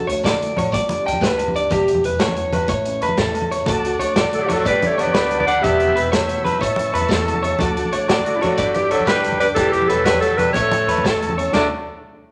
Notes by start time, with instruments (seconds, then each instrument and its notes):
Already playing: nylon-string guitar D3 F#4
0.00 low conga
0.07 upright bass D2, nylon-string guitar A3, clean electric guitar C#5, closed hi-hat, low conga, shekere
0.24 upright bass D3, nylon-string guitar D3, clean electric guitar D5, snare, closed hi-hat, high conga, low agogo, shekere
0.33 low conga
0.40 nylon-string guitar E3, closed hi-hat, shekere
0.48 low conga, shekere
0.56 upright bass A1, nylon-string guitar F#3, clean electric guitar C#5, closed hi-hat, low conga, low agogo
0.66 low conga
0.72 upright bass G1, nylon-string guitar G2 G4, clean electric guitar D5, kick, closed hi-hat, high conga, shekere
0.81 low conga
0.89 nylon-string guitar D4, closed hi-hat, low conga
0.97 shekere
1.05 upright bass D2, clean electric guitar G5, closed hi-hat, low conga, low agogo
1.13 low conga, shekere
1.21 upright bass D2, nylon-string guitar G4, clean electric guitar B4, snare, closed hi-hat, high conga, shekere
1.31 low conga
1.38 nylon-string guitar G2, closed hi-hat, low agogo, shekere
1.48 low conga
1.54 nylon-string guitar D4, clean electric guitar D5, closed hi-hat, shekere
1.70 upright bass E1, nylon-string guitar E2 G4, clean electric guitar G4, kick, closed hi-hat, high conga, low conga, low agogo, shekere
1.88 nylon-string guitar B3, closed hi-hat
1.95 low conga
2.03 upright bass E1, nylon-string guitar E3, clean electric guitar B4, closed hi-hat, shekere
2.12 low conga
2.19 nylon-string guitar E2, clean electric guitar C#5, snare, closed hi-hat, high conga, low agogo, shekere
2.29 low conga
2.36 nylon-string guitar F#2, closed hi-hat, low conga, shekere
2.44 shekere
2.52 upright bass E1, nylon-string guitar G2, clean electric guitar B4, closed hi-hat, low conga, low agogo, shekere
2.62 shekere
2.68 upright bass A1, nylon-string guitar A2, clean electric guitar C#5, muted nylon-string guitar stroke, kick, closed hi-hat, high conga, low conga, shekere
2.85 nylon-string guitar C#4, closed hi-hat
2.93 shekere
3.01 upright bass E2, nylon-string guitar E3, clean electric guitar B4, closed hi-hat, low agogo
3.09 low conga
3.17 upright bass E2, nylon-string guitar E4, clean electric guitar A4, kick, snare, closed hi-hat, high conga, low conga, shekere
3.35 nylon-string guitar E2, closed hi-hat, low agogo
3.42 low conga
3.51 nylon-string guitar C#4, clean electric guitar C#5, closed hi-hat, shekere
3.59 low conga, shekere
3.66 upright bass D2, nylon-string guitar D3 F#4, clean electric guitar A4, transistor combo organ F#5 A5 D6, kick, closed hi-hat, high conga, low conga, low agogo, shekere
3.85 nylon-string guitar F#4, closed hi-hat
3.92 shekere
3.99 upright bass D2, nylon-string guitar A3, clean electric guitar C#5, closed hi-hat, low conga, shekere
4.16 upright bass D3, nylon-string guitar F#4, clean electric guitar D5, snare, closed hi-hat, high conga, low agogo, shekere
4.24 low conga
4.32 nylon-string guitar A2, clarinet A4, closed hi-hat, shekere
4.37 tenor saxophone F#3, low conga, shekere
4.43 clarinet G4
4.47 upright bass D2, tenor saxophone E3, nylon-string guitar E4, clean electric guitar C#5, snare, closed hi-hat, low conga, low agogo
4.52 tenor saxophone F#3, clarinet A4
4.57 nylon-string guitar F#4, low conga
4.65 upright bass G1, nylon-string guitar G2 D3 B3 D4 G4, clarinet B4, clean electric guitar D5, transistor combo organ G5 B5, kick, closed hi-hat, high conga, shekere
4.70 tenor saxophone G3, low conga
4.82 nylon-string guitar D4, closed hi-hat, low conga
4.86 tenor saxophone A3, clarinet C#5, shekere
4.91 low conga
4.98 upright bass D2, nylon-string guitar D3, tenor saxophone B3, clean electric guitar C#5, clarinet D5, closed hi-hat, low conga, low agogo
5.07 low conga, shekere
5.14 upright bass D2, nylon-string guitar G4, clean electric guitar B4, snare, closed hi-hat, high conga, shekere
5.23 shekere
5.30 muted nylon-string guitar stroke, closed hi-hat, low agogo, shekere
5.39 tenor saxophone B3, clarinet D5, low conga
5.47 tenor saxophone D4, clean electric guitar D5, clarinet F#5, closed hi-hat, shekere
5.61 upright bass E1, nylon-string guitar E2 G4, tenor saxophone B3, clean electric guitar G4, clarinet E5, transistor combo organ B5 E6, kick, closed hi-hat, high conga, low conga, low agogo, shekere
5.80 nylon-string guitar B3, closed hi-hat
5.88 low conga, shekere
5.95 upright bass E1, nylon-string guitar E3, clean electric guitar B4, closed hi-hat, low conga, shekere
6.11 upright bass E2, nylon-string guitar G4, clean electric guitar C#5, snare, closed hi-hat, high conga, low agogo, shekere
6.21 low conga
6.28 nylon-string guitar B2, closed hi-hat, shekere
6.36 low conga, shekere
6.45 upright bass G1, nylon-string guitar B3, clean electric guitar B4, closed hi-hat, low conga, low agogo
6.53 low conga
6.58 nylon-string guitar A2 E4, clean electric guitar C#5, high conga, shekere
6.62 upright bass A1, transistor combo organ E5 A5 C#6, kick, closed hi-hat
6.68 low conga
6.76 nylon-string guitar C#4, closed hi-hat, low conga
6.85 low conga, shekere
6.93 upright bass E2, nylon-string guitar E3, clean electric guitar B4, closed hi-hat, low conga, low agogo
7.01 low conga, shekere
7.09 upright bass E2, clean electric guitar A4, snare, closed hi-hat, high conga, shekere
7.17 low conga
7.25 nylon-string guitar B2, closed hi-hat, low agogo, shekere
7.34 low conga
7.42 nylon-string guitar C#3, clean electric guitar C#5, closed hi-hat, shekere
7.59 upright bass D2, nylon-string guitar D3 F#4, clean electric guitar A4, transistor combo organ F#5 A5 D6, kick, closed hi-hat, high conga, low conga, low agogo, shekere
7.77 nylon-string guitar F#4, closed hi-hat
7.85 low conga, shekere
7.92 upright bass D2, nylon-string guitar A3, clean electric guitar C#5, closed hi-hat, shekere
8.08 upright bass D3, nylon-string guitar F#4, clean electric guitar D5, snare, closed hi-hat, high conga, low agogo, shekere
8.19 low conga
8.25 nylon-string guitar A2, tenor saxophone D3, clarinet F#4, closed hi-hat, shekere
8.33 tenor saxophone C#3, clarinet E4, low conga, shekere
8.41 upright bass D2, tenor saxophone D3, nylon-string guitar D4, clarinet F#4, clean electric guitar C#5, snare, closed hi-hat, low conga, low agogo
8.52 low conga
8.57 upright bass G1, nylon-string guitar G2 D4, clean electric guitar D5, transistor combo organ G5 B5 D6, kick, closed hi-hat, high conga, shekere
8.68 low conga
8.74 tenor saxophone E3, nylon-string guitar D4, clarinet G4, closed hi-hat, low conga
8.82 low conga, shekere
8.90 upright bass D2, nylon-string guitar D3, tenor saxophone F#3, clarinet A4, clean electric guitar C#5, closed hi-hat, low conga, low agogo
8.99 low conga, shekere
9.06 upright bass D2, tenor saxophone G3, nylon-string guitar D4, clean electric guitar B4, clarinet B4, snare, closed hi-hat, high conga, shekere
9.15 low conga, shekere
9.23 nylon-string guitar G2, closed hi-hat, low agogo, shekere
9.32 low conga
9.40 tenor saxophone G3, nylon-string guitar D4, clarinet B4, clean electric guitar D5, closed hi-hat, shekere
9.55 upright bass E1, nylon-string guitar E2, tenor saxophone E3, clean electric guitar G4, clarinet A4, transistor combo organ E6, kick, closed hi-hat, high conga, low conga, low agogo, shekere
9.59 nylon-string guitar G4
9.66 low conga
9.72 tenor saxophone E3, nylon-string guitar B3, clarinet G4, closed hi-hat
9.82 low conga
9.88 upright bass E1, nylon-string guitar E3, tenor saxophone F#3, clarinet A4, clean electric guitar B4, closed hi-hat, shekere
9.97 low conga
10.04 upright bass E2, tenor saxophone G3, nylon-string guitar G4, clarinet B4, clean electric guitar C#5, snare, closed hi-hat, high conga, low conga, low agogo, shekere
10.13 low conga, shekere
10.21 nylon-string guitar B2, tenor saxophone F#3, clarinet A4, closed hi-hat, low conga, shekere
10.29 low conga, shekere
10.38 upright bass E1, tenor saxophone G3, nylon-string guitar B3, clarinet B4, closed hi-hat, low conga, low agogo, shekere
10.53 upright bass A1, nylon-string guitar A2 E3 A3 C#4, clarinet C#5, clean electric guitar C#5, transistor combo organ C#6, kick, closed hi-hat, high conga, low conga, shekere
10.57 tenor saxophone A3, nylon-string guitar E4, transistor combo organ A5
10.71 nylon-string guitar C#4, closed hi-hat, low conga, shekere
10.81 low conga, shekere
10.87 upright bass E2, nylon-string guitar E3, clean electric guitar B4, closed hi-hat, low conga, low agogo, shekere
10.96 low conga, shekere
11.03 upright bass E2, nylon-string guitar E4, clean electric guitar A4, kick, snare, closed hi-hat, high conga, low conga, shekere
11.14 low conga, shekere
11.20 nylon-string guitar E2, closed hi-hat, low agogo, shekere
11.29 low conga
11.38 nylon-string guitar C#4, clean electric guitar C#5, closed hi-hat
11.46 shekere
11.53 upright bass D2, nylon-string guitar D3 A3 F#4, tenor saxophone A3, clean electric guitar D4, transistor combo organ A4 D5 F#5, clarinet D5, snare, floor tom, crash, high conga, low agogo, shekere